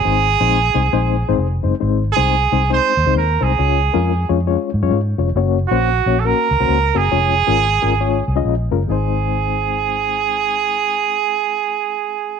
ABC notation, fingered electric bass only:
X:1
M:4/4
L:1/16
Q:"Swing" 1/4=136
K:Abmix
V:1 name="Fingered electric bass" clef=bass
A,,,3 B,,,3 C,,2 B,,,3 A,,, F,,,2 G,,, z | A,,,3 C,,3 C,,3 z E,, D,, E,,2 C,,2 | D,,3 F,,3 F,,3 z A,, G,, A,,2 F,,,2 | G,,,3 B,,,3 B,,,3 z D,, C,, D,,2 G,,,2 |
F,,,3 A,,,3 A,,,4 C,,2 B,,,2 G,,,2 | A,,,16- | A,,,16 |]